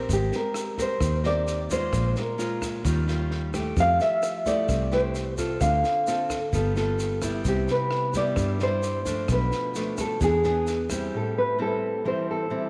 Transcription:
Already playing: nylon-string guitar C4 G4 A#4
0.09 fingered electric bass G#1, nylon-string guitar G#3 G4, kick, snare, shaker
0.32 nylon-string guitar A#4, snare, shaker
0.54 cross-stick, snare, shaker
0.78 nylon-string guitar C4 G4 A#4, kick, snare, shaker
0.82 nylon-string guitar C5
1.00 fingered electric bass D#2, nylon-string guitar D#3, kick, cross-stick, snare, shaker
1.24 nylon-string guitar C4 G4 A#4 D5, snare, shaker
1.47 snare, shaker
1.70 nylon-string guitar G#3 C#4 F4 C5, kick, snare, shaker
1.93 fingered electric bass A#1, nylon-string guitar A#2, kick, cross-stick, snare, shaker
2.16 nylon-string guitar A#4, snare, shaker
2.38 nylon-string guitar G#3 C#4 F4, snare, shaker
2.62 kick, cross-stick, snare, shaker
2.84 fingered electric bass D#2, nylon-string guitar D#3 G3 C#4 F4, kick, snare, shaker
3.08 nylon-string guitar G3 C#4 F4, snare, shaker
3.31 snare
3.54 nylon-string guitar A3 E4 G4, kick, cross-stick, snare, shaker
3.76 fingered electric bass F2, nylon-string guitar F3 F5, kick, snare, shaker
4.00 nylon-string guitar E5, snare, shaker
4.23 cross-stick, snare, shaker
4.46 nylon-string guitar A3 E4 G4 D5, kick, snare, shaker
4.68 fingered electric bass C2, nylon-string guitar C3, kick, cross-stick, snare, shaker
4.92 nylon-string guitar A3 E4 G4 C5, snare, shaker
5.15 snare, shaker
5.38 nylon-string guitar C4 F4 A4, kick, snare, shaker
5.61 fingered electric bass D2, nylon-string guitar D3 F5, kick, cross-stick, snare, shaker
5.84 snare, shaker
6.07 nylon-string guitar C4 F4 A4, snare, shaker
6.30 kick, cross-stick, snare, shaker
6.53 fingered electric bass G1, nylon-string guitar G3 B3 F4 A4, kick, snare, shaker
6.76 nylon-string guitar B3 F4 A4, snare, shaker
6.99 snare, shaker
7.22 nylon-string guitar G3 B3 E4, kick, cross-stick, snare, shaker
7.45 fingered electric bass C2, nylon-string guitar C3 G4, kick, snare, shaker
7.68 nylon-string guitar B4, snare, shaker
7.91 cross-stick, snare
8.14 nylon-string guitar G3 B3 E4 D5, kick, snare, shaker
8.36 fingered electric bass G2, nylon-string guitar G2, kick, cross-stick, snare, shaker
8.59 nylon-string guitar G3 E4 C5, snare, shaker
8.82 snare, shaker
9.05 nylon-string guitar F3 A3 D4, kick, snare, shaker
9.28 fingered electric bass B1, nylon-string guitar B2 B4, kick, cross-stick, snare, shaker
9.52 snare, shaker
9.75 nylon-string guitar F3 A3 D4, snare, shaker
9.98 nylon-string guitar A4, kick, cross-stick, snare, shaker
10.21 fingered electric bass E2, nylon-string guitar E3 B3 D4 G#4, kick, snare, shaker
10.44 nylon-string guitar B3 D4 G#4, snare, shaker
10.67 snare, shaker
10.90 nylon-string guitar G3 C4 E4, kick, cross-stick, snare, shaker
11.14 nylon-string guitar A2 A4
11.38 nylon-string guitar B4
11.59 nylon-string guitar G3 C4 E4 A4
12.05 nylon-string guitar E3 G3 C4 E4 C5
12.31 nylon-string guitar A4
12.50 nylon-string guitar G3 C4 E4

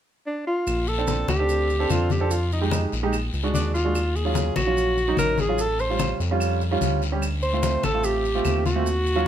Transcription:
0.27 alto saxophone D4
0.47 alto saxophone F4
0.67 analog synth bass A#1, high conga, long guiro, claves, maracas
0.87 alto saxophone A4, high conga, maracas
0.98 grand piano C4 D4 A4
1.07 high conga, short guiro, maracas
1.28 analog synth bass D2, alto saxophone G4, high conga, short guiro, claves, maracas
1.39 grand piano C4 D4 A4
1.49 high conga, long guiro, maracas
1.69 high conga, maracas
1.79 grand piano C4 D4 A4
1.90 analog synth bass F2, alto saxophone F4, high conga, short guiro, claves, maracas
2.10 alto saxophone G4, high conga, short guiro, maracas
2.20 grand piano C4 D4 A4
2.31 alto saxophone F4, high conga, long guiro, maracas
2.51 alto saxophone D#4, high conga, maracas
2.61 grand piano G#3 D#4 G4
2.71 high conga, short guiro, claves, maracas
2.92 analog synth bass A#1, high conga, short guiro, maracas
3.03 grand piano G#3 D#4 G4
3.13 high conga, long guiro, claves, maracas
3.33 analog synth bass C#2, high conga, maracas
3.43 grand piano G#3 D4 F#4
3.54 analog synth bass D#2, alto saxophone D4, high conga, short guiro, maracas
3.74 alto saxophone F4, short guiro, maracas
3.85 grand piano G#3 D4 F#4
3.95 high conga, long guiro, claves, maracas
4.15 alto saxophone G#4, high conga, maracas
4.25 grand piano F#3 C#4 F4
4.35 high conga, short guiro, maracas
4.56 analog synth bass A#1, alto saxophone F#4, high conga, short guiro, claves, maracas
4.67 grand piano F#3 C#4 F4
4.76 high conga, long guiro, maracas
4.97 high conga, maracas
5.08 grand piano F#3 C#4 D#4
5.17 analog synth bass A1, alto saxophone A#4, high conga, short guiro, claves, maracas
5.38 alto saxophone G#4, high conga, short guiro, maracas
5.49 grand piano F#3 C#4 F4
5.58 alto saxophone A4, high conga, long guiro, maracas
5.79 alto saxophone C5, high conga, maracas
5.90 grand piano G3 C#4 F4
5.99 high conga, short guiro, claves, maracas
6.20 analog synth bass F2, high conga, short guiro, maracas
6.31 grand piano G3 C#4 F4
6.40 high conga, long guiro, claves, maracas
6.61 high conga, maracas
6.71 grand piano G3 C#4 F4
6.81 analog synth bass D2, high conga, short guiro, maracas
7.02 short guiro, maracas
7.12 grand piano G3 C#4 G4
7.22 high conga, long guiro, claves, maracas
7.42 alto saxophone C5, high conga, maracas
7.53 grand piano A3 C4 F4
7.63 high conga, short guiro, maracas
7.83 analog synth bass A1, alto saxophone A4, high conga, short guiro, claves, maracas
7.94 grand piano A3 C4 F4
8.04 alto saxophone G4, high conga, long guiro, maracas
8.25 high conga, maracas
8.35 grand piano A3 C4 F4
8.45 analog synth bass D#2, high conga, short guiro, claves, maracas
8.66 alto saxophone F#4, high conga, short guiro, maracas
8.76 grand piano A3 C4 F4
8.86 high conga, long guiro, maracas
9.06 high conga, maracas
9.16 grand piano F#3 C#4 F4

